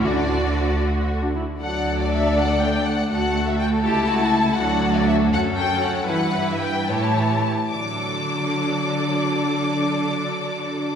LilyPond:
<<
  \new Staff \with { instrumentName = "Violin section" } { \time 6/8 \key d \major \tempo 4. = 77 d''4. r4. | fis''8. d''16 e''8 fis''8 g''8 fis''8 | fis''8. e''16 g''8 a''4. | fis''8. d''16 e''8 fis''8 g''8 fis''8 |
fis''8. e''16 g''8 a''4. | d'''2.~ | d'''2. | }
  \new Staff \with { instrumentName = "Violin section" } { \time 6/8 \key d \major << { fis'2~ fis'16 r8. | d''2. | a'2.~ | a'4. a'4. |
b'4. cis''4 r8 | d''2.~ | d''2. | } \\ { r2. | a'2.~ | a'4. g'8 fis'8 e'8 | fis'4. a'4. |
b'4. g'4 r8 | a'2.~ | a'2. | } >> }
  \new Staff \with { instrumentName = "Viola section" } { \time 6/8 \key d \major << { fis'4. fis'8. d'16 e'8 | d'2. | fis'4. e'4. | d'4. cis'4. |
e'4. e'4 r8 | d'2.~ | d'2. | } \\ { d'4. r4. | fis4. a4. | a2. | fis4. fis4. |
e4. e4 r8 | fis2.~ | fis2. | } >> }
  \new Staff \with { instrumentName = "Cello section" } { \clef bass \time 6/8 \key d \major d2~ d8 r8 | d,2. | d,4. cis,4. | d,4. fis,4. |
g,4. a,4 r8 | d2.~ | d2. | }
  \new Staff \with { instrumentName = "Double bass section" } { \clef bass \time 6/8 \key d \major d,2~ d,8 r8 | r2. | r2. | r2. |
r2. | r2. | r2. | }
>>